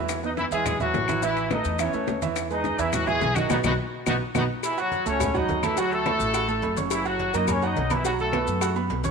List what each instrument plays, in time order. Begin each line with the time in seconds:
Already playing: upright bass E2, grand piano E3 E4 E5
0.09 high bongo, high conga, high timbale, claves, maracas
0.23 grand piano B3 B4, horn section D#4 D#5, high bongo, high conga, maracas
0.37 horn section E3 E4, high bongo, high conga, high timbale, low timbale, maracas
0.51 upright bass E2, grand piano E3 E4 E5, horn section G#3 G#4, high conga, maracas
0.66 high bongo, high conga, low conga, high timbale, claves, maracas
0.80 grand piano E3 E4 E5, horn section F#3 F#4, high bongo, high conga, low conga, maracas
0.94 upright bass A1, high bongo, low bongo, high conga, high timbale, low timbale, maracas
1.08 grand piano E3 E4 E5, high bongo, high conga, high timbale, claves, maracas
1.22 grand piano E3 E4 E5, horn section E3 E4, high bongo, high conga, maracas
1.37 high bongo, high conga, high timbale, maracas
1.51 grand piano A3 A4 B4, horn section D#4 D#5, high bongo, high conga, high timbale, low timbale, claves, maracas
1.65 upright bass E2, maracas
1.79 grand piano E3 E4 E5, horn section C#4 C#5, high bongo, high conga, high timbale, claves, maracas
1.93 upright bass D#2, grand piano A3 A4 B4, high bongo, high conga, maracas
2.07 upright bass E2, high bongo, low bongo, high conga, high timbale, low timbale, maracas
2.22 grand piano E3 E4 E5, high bongo, high conga, high timbale, maracas
2.36 high bongo, high conga, high timbale, claves, maracas
2.50 grand piano G#3 G#4 B4, horn section D#4 D#5, high bongo, high conga, maracas
2.64 high bongo, high conga, high timbale, low timbale, maracas
2.79 upright bass E2, grand piano E3 E4 E5, horn section E3 E4, high conga, maracas
2.93 horn section F#3 F#4, high bongo, high conga, low conga, high timbale, claves, maracas
3.07 grand piano E3 E4 E5, horn section G#3 G#4, high bongo, high conga, low conga, maracas
3.21 upright bass B1, high bongo, low bongo, high conga, high timbale, low timbale, maracas
3.35 grand piano D#3 D#4 D#5, horn section F#3 F#4, high bongo, high conga, high timbale, claves, maracas
3.50 upright bass B1, grand piano B3 D#4 F#4, horn section B3 D#4 F#4, low bongo, high conga, high timbale, claves, maracas
3.64 upright bass B1, grand piano B3 D#4 F#4, horn section B3 D#4 F#4, low bongo, high conga, high timbale, claves, maracas
4.06 upright bass B1, grand piano B3 D#4 F#4, horn section B3 D#4 F#4, low bongo, high conga, high timbale, claves, maracas
4.34 upright bass B1, grand piano B3 D#4 F#4, horn section B3 D#4 F#4, low bongo, high conga, high timbale, claves, maracas
4.63 horn section E3 E4, cowbell, high conga, low agogo, claves, maracas
4.78 horn section F#3 F#4, grand piano F#4 F#5 F#6, high conga, low agogo, maracas
4.92 cowbell, high conga, low timbale, low agogo, maracas
5.06 upright bass C#2, grand piano A3 A4 A5, horn section C#4 C#5, cowbell, high conga, maracas
5.20 cowbell, high conga, low conga, low agogo, claves, maracas
5.34 grand piano F#3 F#4 F#5, horn section D#4 D#5, high conga, low conga, low agogo, maracas
5.49 upright bass D2, cowbell, high conga, low timbale, maracas
5.63 horn section E3 E4, grand piano A3 A4 A5, cowbell, high conga, low agogo, claves, maracas
5.77 grand piano F#3 F#4 F#5, horn section F#3 F#4, cowbell, high conga, low agogo, maracas
5.92 horn section A3 A4, high conga, maracas
6.06 grand piano A3 A4 A5, cowbell, high conga, low timbale, low agogo, claves, maracas
6.20 upright bass A1, high conga, maracas
6.34 grand piano F#4 F#5 F#6, cowbell, high conga, low agogo, claves, maracas
6.48 grand piano A3 A4 A5, high conga, low agogo, maracas
6.62 upright bass F#1, cowbell, high conga, low timbale, low agogo, maracas
6.77 grand piano C#4 C#5 C#6, cowbell, high conga, maracas
6.91 horn section E3 E4, cowbell, high conga, low agogo, claves, maracas
7.05 horn section F#3 F#4, grand piano F#4 F#5 F#6, high conga, low agogo, maracas
7.19 cowbell, high conga, low timbale, low agogo, maracas
7.34 upright bass F#2, grand piano A#3 A#4 A#5, horn section D#4 D#5, cowbell, high conga, maracas
7.48 horn section C#4 C#5, cowbell, high conga, low conga, low agogo, claves, maracas
7.62 grand piano F#3 F#4 F#5, horn section D#4 D#5, low agogo, maracas
7.76 upright bass B1, cowbell, high conga, low timbale, maracas
7.90 horn section E3 E4, grand piano B3 B4 B5, cowbell, high conga, low agogo, claves, maracas
8.04 grand piano F#3 F#4 F#5, horn section F#3 F#4, cowbell, high conga, low agogo, maracas
8.19 horn section A3 A4, high conga, maracas
8.33 grand piano B3 B4 B5, cowbell, high conga, low timbale, low agogo, claves, maracas
8.47 upright bass F#2, high conga, maracas
8.61 grand piano F#4 F#5 F#6, cowbell, high conga, low agogo, claves, maracas
8.75 grand piano B3 B4 B5, high conga, low agogo, maracas
8.90 upright bass B1, cowbell, high conga, low timbale, low agogo, maracas
9.04 grand piano C#4 C#5 C#6, cowbell, high conga, maracas